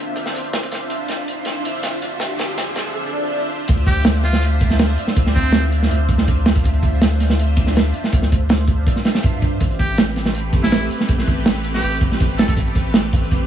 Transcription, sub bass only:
3.69 4.97 D2 loud
5.16 5.89 D2 loud
5.90 6.63 D2 medium
6.64 7.92 D2 loud
8.13 8.85 D2 loud
9.24 9.59 G2 loud
9.61 10.89 A1 loud
11.09 11.82 A1 loud
11.83 12.56 A1 medium
12.57 13.47 A1 loud

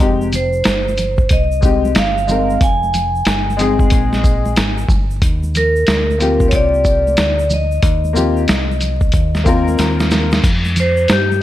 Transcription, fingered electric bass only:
0.00 0.62 F1 medium
0.66 1.28 G1 medium
1.31 1.93 C2 medium
1.96 2.58 G1 medium
2.61 3.23 F1 medium
3.26 3.88 G1 medium
3.92 4.54 A#1 medium
4.57 4.88 G#1 medium
4.89 5.20 G1 medium
5.22 5.84 D#2 loud
5.88 6.49 D2 medium
6.53 7.14 C2 medium
7.18 7.80 D2 medium
7.83 8.45 D#2 loud
8.49 9.10 C2 medium
9.14 9.76 D#2 medium
9.79 10.41 D#2 loud
10.44 11.06 F2 medium
11.09 11.43 G2 medium

